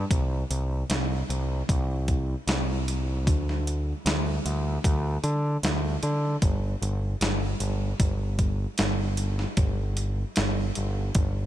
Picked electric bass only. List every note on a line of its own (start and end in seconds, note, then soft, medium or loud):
0.11 0.43 C2 medium
0.50 0.83 C2 medium
0.90 1.22 C2 medium
1.29 1.62 C2 medium
1.69 2.34 C2 medium
2.47 3.28 C2 medium
3.28 3.92 D2 medium
4.06 4.38 D2 medium
4.45 4.78 D2 medium
4.84 5.17 D2 medium
5.24 5.56 D3 medium
5.63 5.96 D2 medium
6.03 6.35 D3 medium
6.42 6.75 G1 medium
6.82 7.14 G1 medium
7.21 7.53 G1 medium
7.60 7.93 G1 medium
8.00 8.65 G1 medium
8.80 9.45 G1 medium
9.58 10.23 G1 medium
10.38 10.70 G1 medium
10.77 11.09 G1 medium
11.15 11.46 G1 medium